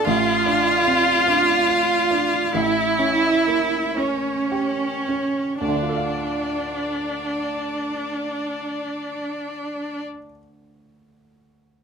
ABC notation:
X:1
M:4/4
L:1/8
Q:1/4=39
K:Dm
V:1 name="Violin"
f4 e2 ^c2 | d8 |]
V:2 name="Cello"
F4 E2 ^C2 | D8 |]
V:3 name="Viola"
F4 E2 ^C2 | D8 |]
V:4 name="Grand piano"
(3A,,, D C (3D F D (3A,,, ^C B, (3C G C | [D,,D,DFAf]8 |]